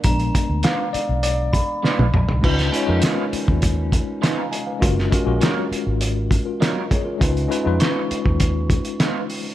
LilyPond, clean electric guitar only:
\new Staff \with { instrumentName = "Clean electric guitar" } { \time 4/4 \key cis \mixolydian \tempo 4 = 101 r4 <gis d' eis' b'>8 r4. <gis d' eis' b'>8 r8 | r4 <gis dis' eis' b'>8 r4. <gis dis' eis' b'>8 r8 | r4 <fis cis' eis' ais'>8 r4. <fis cis' eis' ais'>8 r8 | r4 <gis dis' eis' b'>8 r4. <gis dis' eis' b'>8 r8 | }